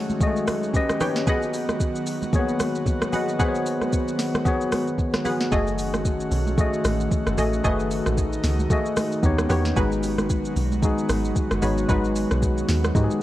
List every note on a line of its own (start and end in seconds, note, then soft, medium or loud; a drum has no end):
0.00 1.23 D#3 medium
0.00 0.70 F#3 medium
0.00 0.20 G#3 medium
0.00 0.27 A3 medium
0.00 0.70 A3 medium
0.00 1.23 C#4 medium
0.00 0.21 F#4 medium
0.00 0.70 F#4 medium
0.00 0.22 G#4 medium
0.00 0.76 C#5 loud
0.00 0.23 D#5 loud
0.10 high conga medium
0.10 shaker soft
0.20 0.28 G#3 medium
0.20 0.74 F#4 medium
0.20 0.75 G#4 medium
0.20 0.75 D#5 loud
0.20 kick loud
0.20 low conga medium
0.20 shaker medium
0.27 0.77 A3 medium
0.36 shaker soft
0.47 cross-stick loud
0.47 open hi-hat medium
0.47 high conga medium
0.47 shaker loud
0.63 shaker medium
0.73 1.27 A#3 medium
0.73 5.48 B3 medium
0.73 0.96 C#4 medium
0.73 1.27 G4 medium
0.73 0.96 G4 medium
0.73 0.97 B4 medium
0.73 0.97 D#5 loud
0.73 kick loud
0.73 low conga medium
0.73 shaker medium
0.89 cross-stick loud
0.89 high conga medium
0.89 shaker medium
1.00 1.22 C#4 medium
1.00 1.15 D#4 medium
1.00 1.23 G4 medium
1.00 1.15 B4 medium
1.00 1.23 B4 medium
1.00 1.15 C#5 medium
1.00 1.24 C#5 medium
1.00 1.15 G5 medium
1.00 cross-stick medium
1.00 open hi-hat soft
1.00 low conga medium
1.00 shaker medium
1.16 snare medium
1.16 shaker medium
1.26 13.23 D#3 medium
1.26 5.48 F#3 medium
1.26 2.13 B3 medium
1.26 5.48 F#4 medium
1.26 2.13 F#4 medium
1.26 1.77 G#4 loud
1.26 2.14 G#4 medium
1.26 1.77 B4 medium
1.26 2.14 D#5 loud
1.26 1.77 F#5 loud
1.26 kick loud
1.26 low conga medium
1.26 shaker medium
1.42 shaker medium
1.54 open hi-hat medium
1.54 shaker medium
1.69 cross-stick medium
1.69 high conga medium
1.69 shaker medium
1.80 kick medium
1.80 shaker medium
1.96 shaker medium
2.07 open hi-hat medium
2.07 shaker loud
2.22 high conga medium
2.22 shaker soft
2.33 2.40 A#3 medium
2.33 2.99 F#4 medium
2.33 2.99 G#4 medium
2.33 3.00 C#5 loud
2.33 kick loud
2.33 low conga medium
2.33 shaker medium
2.39 3.02 B3 medium
2.49 shaker soft
2.60 cross-stick loud
2.60 open hi-hat medium
2.60 high conga medium
2.60 shaker loud
2.75 shaker medium
2.86 kick loud
2.86 low conga medium
2.86 shaker medium
3.02 cross-stick loud
3.02 high conga medium
3.02 shaker medium
3.12 3.35 B3 medium
3.12 3.35 F#4 medium
3.12 3.28 G#4 medium
3.12 3.36 G#4 medium
3.12 3.28 B4 medium
3.12 3.36 D#5 medium
3.12 3.28 F#5 medium
3.12 open hi-hat soft
3.12 low conga medium
3.12 shaker medium
3.28 shaker medium
3.39 4.25 B3 medium
3.39 4.26 F#4 medium
3.39 3.89 G#4 loud
3.39 4.26 G#4 medium
3.39 3.89 B4 medium
3.39 3.48 C5 medium
3.39 3.89 F#5 loud
3.39 kick loud
3.39 low conga medium
3.39 shaker medium
3.48 4.30 C#5 loud
3.55 shaker medium
3.66 open hi-hat medium
3.66 shaker medium
3.81 cross-stick medium
3.81 high conga medium
3.81 shaker medium
3.93 kick medium
3.93 shaker medium
4.08 shaker medium
4.19 snare medium
4.19 open hi-hat medium
4.19 shaker loud
4.35 cross-stick loud
4.35 high conga medium
4.35 shaker soft
4.45 5.11 B3 medium
4.45 5.11 F#4 medium
4.45 5.12 G#4 medium
4.45 5.12 C#5 loud
4.45 kick loud
4.45 low conga medium
4.45 shaker medium
4.61 shaker soft
4.72 cross-stick loud
4.72 open hi-hat medium
4.72 high conga medium
4.72 shaker loud
4.88 shaker medium
4.98 kick medium
4.98 low conga medium
4.98 shaker medium
5.14 cross-stick loud
5.14 snare medium
5.14 high conga medium
5.14 shaker medium
5.25 5.47 B3 medium
5.25 5.48 F#4 medium
5.25 5.40 G#4 medium
5.25 5.48 G#4 medium
5.25 5.40 B4 medium
5.25 5.49 B4 medium
5.25 5.40 F#5 medium
5.25 open hi-hat medium
5.25 low conga medium
5.25 shaker medium
5.41 snare medium
5.41 shaker medium
5.51 6.28 F#1 loud
5.51 6.37 A3 medium
5.51 9.20 A3 medium
5.51 7.62 C#4 medium
5.51 9.20 F#4 medium
5.51 6.38 F#4 medium
5.51 6.01 G#4 loud
5.51 6.38 G#4 medium
5.51 6.01 A4 medium
5.51 6.02 D#5 loud
5.51 6.39 D#5 loud
5.51 kick loud
5.51 low conga medium
5.51 shaker medium
5.67 shaker medium
5.78 open hi-hat medium
5.78 shaker medium
5.94 cross-stick medium
5.94 high conga medium
5.94 shaker medium
6.05 kick medium
6.05 shaker medium
6.20 shaker medium
6.31 6.68 B1 loud
6.31 open hi-hat medium
6.31 shaker loud
6.47 high conga medium
6.47 shaker soft
6.57 7.23 A3 medium
6.57 7.24 F#4 medium
6.57 7.24 G#4 medium
6.57 7.25 D#5 medium
6.57 kick loud
6.57 low conga medium
6.57 shaker medium
6.73 shaker soft
6.84 7.08 A1 loud
6.84 cross-stick loud
6.84 open hi-hat medium
6.84 high conga medium
6.84 shaker loud
7.00 shaker medium
7.10 kick medium
7.10 low conga medium
7.10 shaker medium
7.26 7.36 F#1 medium
7.26 cross-stick medium
7.26 high conga medium
7.26 shaker medium
7.37 7.61 A1 medium
7.37 7.59 A3 medium
7.37 7.60 F#4 medium
7.37 7.52 G#4 medium
7.37 7.61 G#4 medium
7.37 7.52 A4 medium
7.37 7.53 D#5 medium
7.37 7.61 D#5 medium
7.37 open hi-hat medium
7.37 low conga medium
7.37 shaker medium
7.53 shaker medium
7.64 8.01 F#1 loud
7.64 8.50 A3 medium
7.64 9.22 D#4 medium
7.64 8.50 F#4 medium
7.64 8.14 G#4 loud
7.64 8.51 G#4 medium
7.64 8.14 A4 medium
7.64 8.51 B4 loud
7.64 8.14 D#5 loud
7.64 kick loud
7.64 low conga medium
7.64 shaker medium
7.80 shaker medium
7.91 open hi-hat medium
7.91 shaker medium
8.06 8.39 A1 medium
8.06 cross-stick medium
8.06 high conga medium
8.06 shaker medium
8.17 kick medium
8.17 shaker medium
8.33 shaker medium
8.44 8.67 C#2 loud
8.44 snare medium
8.44 open hi-hat medium
8.44 shaker loud
8.59 high conga medium
8.59 shaker soft
8.70 9.23 A3 medium
8.70 9.24 F#4 medium
8.70 9.24 G#4 medium
8.70 9.25 D#5 loud
8.70 kick loud
8.70 low conga medium
8.70 shaker medium
8.86 shaker soft
8.97 cross-stick loud
8.97 open hi-hat medium
8.97 high conga medium
8.97 shaker loud
9.12 shaker medium
9.23 9.47 D#2 loud
9.23 9.76 A#3 medium
9.23 9.45 B3 medium
9.23 13.23 B3 medium
9.23 9.76 C#4 medium
9.23 9.46 D#4 medium
9.23 9.76 G4 medium
9.23 9.46 G4 medium
9.23 9.47 C#5 loud
9.23 kick medium
9.23 low conga medium
9.23 shaker medium
9.39 cross-stick loud
9.39 high conga medium
9.39 shaker medium
9.49 9.73 E2 loud
9.49 9.72 B3 medium
9.49 9.72 D#4 medium
9.49 9.65 G4 medium
9.49 9.73 G4 medium
9.49 9.65 B4 medium
9.49 9.65 C#5 medium
9.49 9.73 C#5 medium
9.49 cross-stick medium
9.49 open hi-hat medium
9.49 low conga medium
9.49 shaker medium
9.65 snare medium
9.65 shaker medium
9.76 10.52 G#1 loud
9.76 13.23 F#3 medium
9.76 10.62 G#3 medium
9.76 13.23 G#3 medium
9.76 10.63 D#4 medium
9.76 10.26 F#4 loud
9.76 13.23 F#4 medium
9.76 10.63 F#4 medium
9.76 10.26 G#4 medium
9.76 10.26 B4 loud
9.76 10.64 B4 medium
9.76 kick loud
9.76 low conga medium
9.76 shaker medium
9.92 shaker medium
10.03 open hi-hat medium
10.03 shaker medium
10.18 cross-stick medium
10.18 high conga medium
10.18 shaker medium
10.30 kick medium
10.30 shaker medium
10.45 shaker medium
10.56 10.93 B1 loud
10.56 open hi-hat medium
10.56 shaker loud
10.72 high conga medium
10.72 shaker soft
10.82 11.48 G#3 medium
10.82 11.48 D#4 medium
10.82 11.49 F#4 medium
10.82 11.49 G#4 loud
10.82 kick loud
10.82 low conga medium
10.82 shaker medium
10.98 shaker soft
11.09 11.32 G#1 medium
11.09 cross-stick loud
11.09 open hi-hat medium
11.09 high conga medium
11.09 shaker loud
11.25 shaker medium
11.35 kick medium
11.35 low conga medium
11.35 shaker medium
11.51 11.61 F#1 medium
11.51 cross-stick loud
11.51 high conga medium
11.51 shaker medium
11.62 11.86 G#1 medium
11.62 11.84 G#3 medium
11.62 11.85 D#4 medium
11.62 11.77 F#4 medium
11.62 11.85 F#4 medium
11.62 11.77 G#4 medium
11.62 11.77 B4 medium
11.62 11.86 C#5 medium
11.62 open hi-hat soft
11.62 low conga medium
11.62 shaker medium
11.78 shaker medium
11.88 12.26 G#1 loud
11.88 12.75 G#3 medium
11.88 12.75 D#4 medium
11.88 12.38 F#4 loud
11.88 12.76 F#4 medium
11.88 12.39 G#4 medium
11.88 12.39 B4 loud
11.88 12.76 B4 medium
11.88 kick loud
11.88 low conga medium
11.88 shaker medium
12.04 shaker soft
12.16 open hi-hat medium
12.16 shaker medium
12.31 12.64 B1 medium
12.31 cross-stick medium
12.31 high conga medium
12.31 shaker medium
12.42 kick medium
12.42 shaker medium
12.58 shaker medium
12.68 12.92 D#2 loud
12.68 snare medium
12.68 open hi-hat medium
12.68 shaker medium
12.84 cross-stick loud
12.84 high conga medium
12.84 shaker soft
12.95 13.09 G#2 loud
12.95 13.23 G#3 medium
12.95 13.23 D#4 medium
12.95 13.23 F#4 medium
12.95 13.04 G4 medium
12.95 kick loud
12.95 low conga medium
12.95 shaker medium
13.04 13.23 G#4 medium
13.11 shaker soft